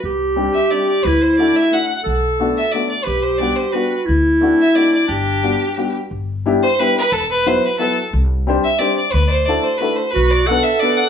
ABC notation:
X:1
M:3/4
L:1/16
Q:1/4=178
K:G
V:1 name="Violin"
z6 e2 d2 d2 | B2 c2 d2 e2 f3 z | z6 e2 d2 d2 | B2 c2 d2 c2 B3 z |
z6 e2 d2 d2 | G8- G2 z2 | z6 c2 B2 B2 | A2 B2 c2 B2 A3 z |
z6 e2 d2 d2 | B3/2 d/2 c2 d2 c2 B2 c2 | B2 d2 f2 e2 d2 f2 |]
V:2 name="Clarinet"
G12 | E8- E2 z2 | A8 z4 | G8 F4 |
E12 | D8- D2 z2 | z12 | z12 |
z12 | z12 | F4 A8 |]
V:3 name="Upright piano"
z4 [G,CDG]2 z2 [G,CDG]2 z2 | z4 [A,DEF]2 z2 [A,DEF]2 z2 | z4 [A,B,DF]2 z2 [A,B,DF]2 z2 | z4 [G,B,DF]2 z2 [G,B,DF]2 z2 |
z4 [A,CDF]2 z2 [A,CDF]2 z2 | z4 [G,B,DF]2 z2 [G,B,DF]2 z2 | z4 [G,B,DEG]2 z2 [G,B,DEG]2 z2 | z4 [F,B,EFB]2 z2 [F,B,EFB]2 z2 |
z4 [G,CDGc]2 z2 [G,CDGc]2 z2 | z4 [A,DEFA]2 z2 [A,DEFA]2 z2 | z4 [B,DFAB]2 z2 [B,DFAB]2 z2 |]
V:4 name="Upright bass" clef=bass
C,,8 z4 | D,,8 z4 | B,,,8 z4 | B,,,8 z4 |
D,,8 z4 | G,,,8 z4 | G,,,8 z4 | E,,,8 z4 |
C,,8 z4 | D,,8 z4 | B,,,8 z4 |]